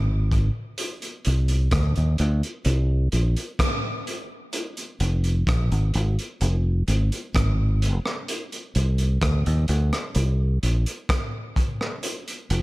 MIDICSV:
0, 0, Header, 1, 3, 480
1, 0, Start_track
1, 0, Tempo, 936914
1, 401, Time_signature, 4, 2, 24, 8
1, 6468, End_track
2, 0, Start_track
2, 0, Title_t, "Fingered electric bass"
2, 0, Program_c, 0, 33
2, 0, Note_on_c, 0, 32, 96
2, 248, Note_off_c, 0, 32, 0
2, 649, Note_on_c, 0, 36, 90
2, 860, Note_off_c, 0, 36, 0
2, 882, Note_on_c, 0, 38, 81
2, 993, Note_off_c, 0, 38, 0
2, 1011, Note_on_c, 0, 39, 87
2, 1112, Note_off_c, 0, 39, 0
2, 1126, Note_on_c, 0, 38, 93
2, 1234, Note_off_c, 0, 38, 0
2, 1361, Note_on_c, 0, 36, 119
2, 1576, Note_off_c, 0, 36, 0
2, 1603, Note_on_c, 0, 34, 92
2, 1713, Note_off_c, 0, 34, 0
2, 2564, Note_on_c, 0, 29, 103
2, 2777, Note_off_c, 0, 29, 0
2, 2803, Note_on_c, 0, 34, 88
2, 2913, Note_off_c, 0, 34, 0
2, 2930, Note_on_c, 0, 32, 91
2, 3031, Note_off_c, 0, 32, 0
2, 3049, Note_on_c, 0, 32, 107
2, 3156, Note_off_c, 0, 32, 0
2, 3286, Note_on_c, 0, 29, 120
2, 3498, Note_off_c, 0, 29, 0
2, 3525, Note_on_c, 0, 32, 90
2, 3634, Note_off_c, 0, 32, 0
2, 3764, Note_on_c, 0, 32, 97
2, 4088, Note_off_c, 0, 32, 0
2, 4486, Note_on_c, 0, 36, 87
2, 4698, Note_off_c, 0, 36, 0
2, 4723, Note_on_c, 0, 38, 94
2, 4832, Note_off_c, 0, 38, 0
2, 4850, Note_on_c, 0, 39, 89
2, 4951, Note_off_c, 0, 39, 0
2, 4965, Note_on_c, 0, 38, 99
2, 5074, Note_off_c, 0, 38, 0
2, 5204, Note_on_c, 0, 36, 110
2, 5417, Note_off_c, 0, 36, 0
2, 5446, Note_on_c, 0, 34, 92
2, 5554, Note_off_c, 0, 34, 0
2, 6407, Note_on_c, 0, 29, 106
2, 6468, Note_off_c, 0, 29, 0
2, 6468, End_track
3, 0, Start_track
3, 0, Title_t, "Drums"
3, 162, Note_on_c, 9, 36, 73
3, 164, Note_on_c, 9, 42, 81
3, 213, Note_off_c, 9, 36, 0
3, 216, Note_off_c, 9, 42, 0
3, 398, Note_on_c, 9, 42, 103
3, 450, Note_off_c, 9, 42, 0
3, 523, Note_on_c, 9, 42, 57
3, 574, Note_off_c, 9, 42, 0
3, 639, Note_on_c, 9, 42, 84
3, 690, Note_off_c, 9, 42, 0
3, 760, Note_on_c, 9, 42, 55
3, 811, Note_off_c, 9, 42, 0
3, 878, Note_on_c, 9, 42, 89
3, 879, Note_on_c, 9, 36, 115
3, 883, Note_on_c, 9, 37, 106
3, 929, Note_off_c, 9, 42, 0
3, 930, Note_off_c, 9, 36, 0
3, 935, Note_off_c, 9, 37, 0
3, 1002, Note_on_c, 9, 42, 53
3, 1054, Note_off_c, 9, 42, 0
3, 1118, Note_on_c, 9, 42, 76
3, 1169, Note_off_c, 9, 42, 0
3, 1246, Note_on_c, 9, 42, 48
3, 1298, Note_off_c, 9, 42, 0
3, 1356, Note_on_c, 9, 42, 84
3, 1407, Note_off_c, 9, 42, 0
3, 1598, Note_on_c, 9, 42, 72
3, 1650, Note_off_c, 9, 42, 0
3, 1724, Note_on_c, 9, 42, 53
3, 1775, Note_off_c, 9, 42, 0
3, 1840, Note_on_c, 9, 36, 102
3, 1842, Note_on_c, 9, 42, 100
3, 1843, Note_on_c, 9, 37, 112
3, 1891, Note_off_c, 9, 36, 0
3, 1894, Note_off_c, 9, 37, 0
3, 1894, Note_off_c, 9, 42, 0
3, 2086, Note_on_c, 9, 42, 74
3, 2137, Note_off_c, 9, 42, 0
3, 2320, Note_on_c, 9, 42, 97
3, 2371, Note_off_c, 9, 42, 0
3, 2444, Note_on_c, 9, 42, 54
3, 2495, Note_off_c, 9, 42, 0
3, 2562, Note_on_c, 9, 42, 83
3, 2613, Note_off_c, 9, 42, 0
3, 2683, Note_on_c, 9, 42, 49
3, 2735, Note_off_c, 9, 42, 0
3, 2802, Note_on_c, 9, 36, 110
3, 2806, Note_on_c, 9, 42, 83
3, 2811, Note_on_c, 9, 37, 107
3, 2853, Note_off_c, 9, 36, 0
3, 2857, Note_off_c, 9, 42, 0
3, 2863, Note_off_c, 9, 37, 0
3, 2929, Note_on_c, 9, 42, 51
3, 2980, Note_off_c, 9, 42, 0
3, 3042, Note_on_c, 9, 42, 73
3, 3093, Note_off_c, 9, 42, 0
3, 3170, Note_on_c, 9, 42, 51
3, 3221, Note_off_c, 9, 42, 0
3, 3283, Note_on_c, 9, 42, 86
3, 3334, Note_off_c, 9, 42, 0
3, 3523, Note_on_c, 9, 42, 78
3, 3575, Note_off_c, 9, 42, 0
3, 3648, Note_on_c, 9, 42, 58
3, 3700, Note_off_c, 9, 42, 0
3, 3763, Note_on_c, 9, 36, 122
3, 3769, Note_on_c, 9, 37, 124
3, 3769, Note_on_c, 9, 42, 99
3, 3815, Note_off_c, 9, 36, 0
3, 3820, Note_off_c, 9, 37, 0
3, 3820, Note_off_c, 9, 42, 0
3, 4007, Note_on_c, 9, 42, 87
3, 4059, Note_off_c, 9, 42, 0
3, 4127, Note_on_c, 9, 37, 69
3, 4178, Note_off_c, 9, 37, 0
3, 4244, Note_on_c, 9, 42, 105
3, 4295, Note_off_c, 9, 42, 0
3, 4367, Note_on_c, 9, 42, 55
3, 4418, Note_off_c, 9, 42, 0
3, 4483, Note_on_c, 9, 42, 79
3, 4534, Note_off_c, 9, 42, 0
3, 4602, Note_on_c, 9, 42, 51
3, 4653, Note_off_c, 9, 42, 0
3, 4721, Note_on_c, 9, 36, 113
3, 4721, Note_on_c, 9, 42, 92
3, 4727, Note_on_c, 9, 37, 118
3, 4772, Note_off_c, 9, 36, 0
3, 4772, Note_off_c, 9, 42, 0
3, 4778, Note_off_c, 9, 37, 0
3, 4847, Note_on_c, 9, 42, 51
3, 4898, Note_off_c, 9, 42, 0
3, 4959, Note_on_c, 9, 42, 76
3, 5010, Note_off_c, 9, 42, 0
3, 5086, Note_on_c, 9, 42, 53
3, 5087, Note_on_c, 9, 37, 64
3, 5137, Note_off_c, 9, 42, 0
3, 5138, Note_off_c, 9, 37, 0
3, 5199, Note_on_c, 9, 42, 82
3, 5250, Note_off_c, 9, 42, 0
3, 5445, Note_on_c, 9, 42, 73
3, 5496, Note_off_c, 9, 42, 0
3, 5565, Note_on_c, 9, 42, 57
3, 5617, Note_off_c, 9, 42, 0
3, 5682, Note_on_c, 9, 36, 108
3, 5686, Note_on_c, 9, 37, 114
3, 5686, Note_on_c, 9, 42, 90
3, 5733, Note_off_c, 9, 36, 0
3, 5737, Note_off_c, 9, 37, 0
3, 5737, Note_off_c, 9, 42, 0
3, 5924, Note_on_c, 9, 36, 75
3, 5928, Note_on_c, 9, 42, 85
3, 5975, Note_off_c, 9, 36, 0
3, 5979, Note_off_c, 9, 42, 0
3, 6050, Note_on_c, 9, 37, 62
3, 6102, Note_off_c, 9, 37, 0
3, 6163, Note_on_c, 9, 42, 95
3, 6214, Note_off_c, 9, 42, 0
3, 6290, Note_on_c, 9, 42, 56
3, 6341, Note_off_c, 9, 42, 0
3, 6405, Note_on_c, 9, 42, 88
3, 6456, Note_off_c, 9, 42, 0
3, 6468, End_track
0, 0, End_of_file